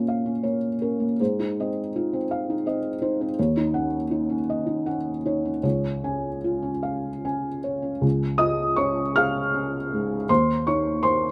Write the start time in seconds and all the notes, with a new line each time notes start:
Already playing: A#2 A#3 C#4 F4 A#4 C#5
0.08 F5
0.26 C#4
0.43 A#3 C#5
0.82 C#4 A#4
1.00 A#3
1.20 G#2 C5
1.40 D#4
1.60 C4 D#5
1.96 D#4 F4
2.13 C4
2.31 F5
2.50 D#4
2.66 C4 D#5
3.02 D#4 C5
3.21 C4
3.39 D#2 C#5
3.57 D#4
3.74 C#4 F#5
4.11 D#4
4.29 C#4
4.50 D#5
4.66 D#4
4.86 C#4 F#5
5.25 D#4 C#5
5.45 C#4
5.63 C#2 C#5
6.04 C#4 G#5
6.44 F4
6.62 C#4
6.83 F5
7.25 C#4 G#5
7.64 C#5
7.82 C#4
8.01 C#2
8.38 F4 D#5 D#6
8.76 C#4 C#5 C#6
9.16 G#4 F5 F6
9.54 C#4
9.93 G#2
10.29 D#2 C5 C6
10.67 D#4 C#5 C#6
11.03 A#3 C5 C6